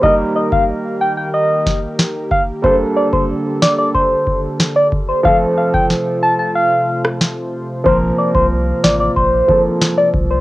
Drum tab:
SD |----------o-o---|------o-----o---|----o------ro---|------o-----o---|
BD |o--o------o---o-|o--o----o-o---o-|o--o------------|o--o----o-o---o-|